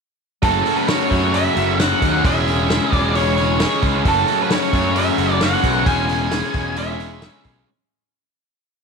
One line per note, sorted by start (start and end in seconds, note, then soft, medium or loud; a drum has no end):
0.42 0.61 F#1 medium
0.42 1.09 F#2 medium
0.42 1.10 C#3 medium
0.42 0.87 F#3 medium
0.42 1.09 F#3 loud
0.42 0.68 A3 medium
0.42 0.67 C#4 medium
0.42 0.64 F#4 medium
0.42 0.78 A4 medium
0.42 kick medium
0.42 open hi-hat medium
0.65 0.88 A3 medium
0.65 0.90 C#4 medium
0.65 0.90 F#4 medium
0.65 open hi-hat soft
0.77 0.89 B4 medium
0.88 1.32 F#3 medium
0.88 1.33 A3 medium
0.88 1.35 C#4 medium
0.88 1.35 F#4 medium
0.88 1.35 C#5 medium
0.88 snare loud
0.88 open hi-hat medium
1.10 1.47 F#2 medium
1.10 1.77 F#2 medium
1.10 1.78 C#3 medium
1.10 1.77 F#3 medium
1.10 kick medium
1.10 open hi-hat soft
1.33 1.78 F#3 medium
1.33 1.59 A3 medium
1.33 1.58 C#4 loud
1.33 1.55 F#4 loud
1.33 1.76 E5 medium
1.33 open hi-hat medium
1.56 1.93 F#1 medium
1.56 1.79 A3 medium
1.56 1.81 C#4 medium
1.56 1.81 F#4 medium
1.56 open hi-hat medium
1.79 2.23 F#2 medium
1.79 2.22 C#3 medium
1.79 2.23 F#3 medium
1.79 2.24 F#3 medium
1.79 2.04 A3 medium
1.79 2.03 C#4 medium
1.79 2.26 F#5 loud
1.79 snare loud
1.79 open hi-hat medium
1.83 2.00 F#4 medium
2.01 2.20 D#2 medium
2.01 2.24 A3 medium
2.01 2.26 C#4 medium
2.01 2.23 F#4 medium
2.01 kick medium
2.01 open hi-hat medium
2.23 2.79 E1 loud
2.23 2.90 C#3 medium
2.23 2.67 E3 medium
2.23 2.91 G#3 medium
2.23 2.49 G#3 medium
2.23 2.48 C#4 loud
2.23 2.91 C#4 medium
2.23 2.92 E5 medium
2.23 kick loud
2.23 open hi-hat medium
2.28 2.46 G#4 medium
2.47 2.69 G#3 soft
2.47 2.71 C#4 medium
2.47 2.71 G#4 medium
2.47 open hi-hat medium
2.69 3.13 E3 medium
2.69 3.15 G#3 medium
2.69 3.16 C#4 medium
2.69 3.17 G#4 medium
2.69 snare loud
2.69 open hi-hat medium
2.91 3.65 E1 medium
2.91 3.58 C#3 medium
2.91 3.59 G#3 medium
2.91 3.63 C#4 medium
2.91 3.18 D5 medium
2.91 kick medium
2.91 open hi-hat soft
3.14 3.58 E3 medium
3.14 3.39 G#3 loud
3.14 3.38 C#4 loud
3.14 3.36 G#4 loud
3.14 3.79 C#5 medium
3.14 open hi-hat medium
3.37 3.59 G#3 medium
3.37 3.61 C#4 medium
3.37 3.61 G#4 medium
3.37 open hi-hat soft
3.59 4.04 C#3 medium
3.59 4.03 E3 medium
3.59 3.84 G#3 medium
3.59 4.04 G#3 medium
3.59 3.83 C#4 medium
3.59 3.81 G#4 medium
3.59 snare loud
3.59 open hi-hat medium
3.63 5.89 C#4 medium
3.82 4.01 C#2 medium
3.82 4.05 G#3 medium
3.82 4.07 C#4 medium
3.82 4.04 G#4 medium
3.82 kick medium
3.82 open hi-hat soft
4.04 4.23 F#1 medium
4.04 4.71 F#2 medium
4.04 4.72 C#3 medium
4.04 4.48 F#3 medium
4.04 4.71 F#3 medium
4.04 4.29 A3 medium
4.04 4.28 C#4 loud
4.04 kick loud
4.04 open hi-hat medium
4.08 4.26 F#4 medium
4.08 4.38 A4 medium
4.27 4.49 A3 medium
4.27 4.51 C#4 medium
4.27 4.51 F#4 medium
4.27 open hi-hat soft
4.42 4.52 B4 medium
4.49 4.93 F#3 medium
4.49 4.95 A3 medium
4.49 4.97 C#4 medium
4.49 4.97 F#4 medium
4.49 4.98 C#5 medium
4.49 snare loud
4.49 open hi-hat medium
4.72 5.09 F#2 medium
4.72 5.38 F#2 soft
4.72 5.40 C#3 medium
4.72 5.39 F#3 medium
4.72 kick medium
4.72 open hi-hat soft
4.94 5.39 F#3 medium
4.94 5.20 A3 loud
4.94 5.19 C#4 loud
4.94 5.16 F#4 loud
4.94 5.39 E5 medium
4.94 open hi-hat medium
5.17 5.54 F#1 medium
5.17 5.40 A3 medium
5.17 5.42 C#4 medium
5.17 5.42 F#4 medium
5.17 open hi-hat soft
5.39 5.84 F#2 medium
5.39 5.85 C#3 medium
5.39 5.84 F#3 medium
5.39 5.86 F#3 medium
5.39 5.66 A3 medium
5.39 5.65 C#4 medium
5.39 5.62 F#4 medium
5.39 5.88 F#5 medium
5.39 snare loud
5.39 open hi-hat medium
5.63 5.82 B1 medium
5.63 5.87 A3 medium
5.63 5.88 C#4 medium
5.63 5.85 F#4 medium
5.63 kick medium
5.63 open hi-hat medium
5.86 6.41 E1 medium
5.86 6.53 C#3 medium
5.86 6.30 E3 medium
5.86 6.10 G#3 medium
5.86 6.54 G#3 medium
5.86 6.09 C#4 medium
5.86 6.53 C#4 loud
5.86 6.07 G#4 medium
5.86 6.80 G#5 medium
5.86 kick loud
5.86 open hi-hat medium
6.08 6.31 G#3 medium
6.08 6.32 C#4 medium
6.08 6.33 G#4 medium
6.08 open hi-hat medium
6.31 6.75 E3 medium
6.31 6.76 G#3 medium
6.31 6.77 C#4 medium
6.31 6.78 G#4 medium
6.31 snare loud
6.31 open hi-hat medium
6.43 snare soft
6.54 7.27 E1 medium
6.54 7.20 C#3 medium
6.54 7.22 G#3 medium
6.54 7.21 C#4 medium
6.54 kick medium
6.54 open hi-hat medium
6.76 7.20 E3 loud
6.76 7.01 G#3 loud
6.76 7.00 C#4 loud
6.76 6.98 G#4 loud
6.76 7.42 E5 medium
6.76 open hi-hat medium
6.99 7.21 G#3 medium
6.99 7.23 C#4 medium
6.99 7.23 G#4 medium
6.99 open hi-hat soft
7.21 7.66 C#3 medium
7.21 7.66 E3 medium
7.21 7.47 G#3 medium
7.21 7.67 G#3 medium
7.21 7.45 C#4 medium
7.21 7.43 G#4 medium
7.21 snare loud
7.21 open hi-hat medium
7.25 7.68 C#4 medium
7.44 7.63 B1 medium
7.44 7.68 G#3 medium
7.44 7.67 C#4 medium
7.44 7.66 G#4 medium
7.44 kick medium
7.44 open hi-hat soft